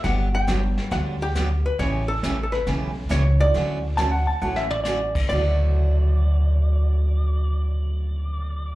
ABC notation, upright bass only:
X:1
M:4/4
L:1/8
Q:"Swing" 1/4=137
K:D
V:1 name="Upright bass" clef=bass
G,,,4 D,,4 | A,,,2 A,,,2 B,,,2 C,,2 | D,,4 A,,,4 | D,,8- |
D,,8 |]